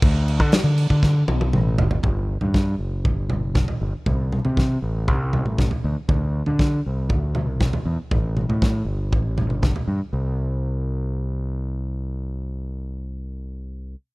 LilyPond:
<<
  \new Staff \with { instrumentName = "Fingered electric bass" } { \clef bass \time 4/4 \key g \major \tempo 4 = 118 d,8. d16 r16 d8 d8. b,,8 a,,8 g,,8 | g,,8. g,8. fis,,8 g,,8. fis,,8 r16 g,,16 r16 | c,8. c8. a,,8 c,8. a,,8 r16 d,16 r16 | d,8. d8. c,8 d,8. c,8 r16 e,16 r16 |
a,,8. a,8. g,,8 a,,8. g,,8 r16 g,16 r16 | c,1~ | c,1 | }
  \new DrumStaff \with { instrumentName = "Drums" } \drummode { \time 4/4 <cymc bd>8 cymc16 bd16 <cymc sn>8 cymc16 bd16 <bd sn>8 tommh16 tommh16 toml8 tomfh16 tomfh16 | <bd tomfh>8. tomfh16 <bd sn>4 <bd tomfh>8 <tomfh toml>8 <bd sn toml>16 tomfh8. | <bd tomfh>8 toml16 tomfh16 <bd sn>4 <bd tomfh>8 <tomfh toml>16 toml16 <bd sn toml>16 tomfh8. | <bd tomfh>8. tomfh16 <bd sn>4 <bd tomfh>8 <tomfh toml>8 <bd sn toml>16 tomfh8. |
<bd tomfh>8 toml16 tomfh16 <bd sn>4 <bd tomfh>8 <tomfh toml>16 toml16 <bd sn toml>16 tomfh8. | r4 r4 r4 r4 | r4 r4 r4 r4 | }
>>